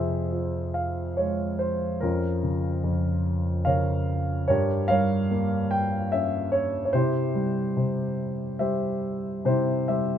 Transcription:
0.00 1.98 F2 soft
0.00 1.56 C3 soft
0.00 0.73 F4 soft
0.00 2.03 G#4 soft
0.00 1.59 C5 soft
0.00 0.78 E5 medium
0.32 1.98 F3 soft
0.74 1.19 F5 medium
1.17 2.00 G#3 soft
1.17 1.61 C#5 soft
1.59 1.98 C5 medium
2.00 2.82 F2 soft
2.00 3.63 C#4 soft
2.00 3.63 F4 soft
2.00 3.65 A#4 medium
2.43 3.65 C#3 soft
2.84 4.44 F2 soft
3.65 4.46 C#3 soft
3.65 4.45 A#4 soft
3.65 4.45 C#5 soft
3.65 4.50 F5 medium
4.48 6.90 G2 soft
4.48 5.69 G4 soft
4.48 4.89 A#4 soft
4.48 4.88 C#5 medium
4.88 6.49 G3 soft
4.88 6.08 A#4 soft
4.88 6.08 C#5 soft
4.88 5.74 F5 medium
5.31 6.89 A#3 soft
5.71 6.13 G5 medium
6.12 6.91 C#4 soft
6.12 6.53 E5 medium
6.52 6.84 C#5 medium
6.85 6.93 C#5 soft
6.93 7.75 C3 medium
6.93 8.57 E4 soft
6.93 8.57 G4 soft
6.93 8.59 C5 medium
7.35 8.58 G3 soft
7.77 9.42 C3 soft
8.59 9.87 G3 soft
8.59 9.45 G4 soft
8.59 9.44 C5 soft
8.59 9.48 E5 medium
9.45 10.18 C3 soft
9.45 10.18 E4 soft
9.45 9.88 G4 soft
9.45 9.88 C5 medium
9.88 10.18 G3 soft
9.88 10.18 G4 soft
9.88 10.18 C5 soft
9.88 10.18 E5 medium

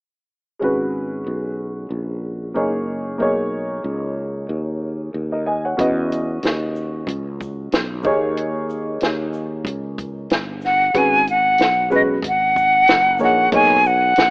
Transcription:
0.59 1.24 G#1 medium
0.59 2.51 G#3 medium
0.59 2.51 C#4 medium
0.59 2.52 F#4 medium
0.64 2.53 B4 medium
1.27 1.88 B1 medium
1.90 2.52 A#1 medium
2.54 3.17 F#1 medium
2.54 3.17 A#3 medium
2.54 3.18 D#4 medium
2.54 3.20 G#4 medium
2.54 3.21 C#5 medium
3.18 3.81 B1 medium
3.18 5.73 A#3 medium
3.18 5.74 D#4 medium
3.18 5.75 G#4 medium
3.22 5.11 C#5 medium
3.84 4.46 C#2 medium
4.49 5.11 D#2 medium
5.14 5.75 D#2 medium
5.32 5.45 A#4 soft
5.32 5.45 D#5 medium
5.46 5.64 D#5 medium
5.46 5.64 G#5 medium
5.65 5.96 C#5 soft
5.65 5.96 F#5 medium
5.77 6.40 E2 medium
5.77 8.00 C#4 medium
5.77 8.00 F#4 medium
5.77 8.01 B4 medium
5.77 8.01 D#5 medium
5.77 kick loud
5.77 closed hi-hat medium
6.12 closed hi-hat soft
6.12 shaker soft
6.43 7.04 D#2 medium
6.43 snare medium
6.43 closed hi-hat medium
6.76 shaker soft
7.07 7.69 C#2 medium
7.07 kick medium
7.07 closed hi-hat medium
7.41 kick medium
7.41 shaker medium
7.72 8.03 B1 medium
7.72 snare loud
7.72 closed hi-hat medium
8.03 8.97 D#2 medium
8.03 10.58 A#3 medium
8.03 10.58 D#4 medium
8.03 10.59 G#4 medium
8.03 10.59 C#5 medium
8.03 kick medium
8.03 shaker soft
8.37 closed hi-hat medium
8.70 shaker soft
9.00 9.63 D#2 medium
9.00 snare medium
9.00 closed hi-hat medium
9.33 shaker soft
9.64 10.26 C#2 medium
9.64 kick medium
9.64 closed hi-hat medium
9.98 kick medium
9.98 closed hi-hat medium
9.98 shaker medium
10.30 10.92 G1 medium
10.30 snare loud
10.30 closed hi-hat medium
10.61 snare soft
10.61 shaker soft
10.65 10.99 F#5 medium
10.94 11.56 G#1 medium
10.94 11.18 G#3 medium
10.94 11.19 C#4 medium
10.94 11.19 F#4 medium
10.94 11.19 B4 medium
10.94 11.28 G#5 medium
10.94 kick loud
10.94 closed hi-hat medium
11.27 11.89 F#5 loud
11.27 closed hi-hat soft
11.27 shaker soft
11.58 12.21 B1 medium
11.58 snare loud
11.58 closed hi-hat medium
11.90 12.15 G#3 medium
11.90 12.15 C#4 medium
11.90 12.15 F#4 medium
11.90 12.16 B4 medium
11.90 shaker soft
11.95 12.02 D#5 medium
12.22 12.84 G#1 medium
12.22 kick medium
12.22 closed hi-hat medium
12.28 13.19 F#5 loud
12.56 kick medium
12.56 shaker medium
12.87 13.19 F#1 medium
12.87 snare loud
12.87 closed hi-hat medium
13.19 13.51 A#1 medium
13.19 13.50 A#3 medium
13.19 13.51 D#4 medium
13.19 13.52 G#4 medium
13.19 13.52 C#5 medium
13.19 shaker soft
13.23 13.52 F#5 medium
13.52 14.14 B1 loud
13.52 13.76 A#3 medium
13.52 13.77 D#4 medium
13.52 13.77 G#4 medium
13.52 13.77 C#5 medium
13.52 13.88 G#5 loud
13.52 kick loud
13.52 closed hi-hat medium
13.85 14.30 F#5 loud
13.85 shaker soft
14.16 14.30 A#1 medium
14.16 snare loud
14.16 closed hi-hat medium

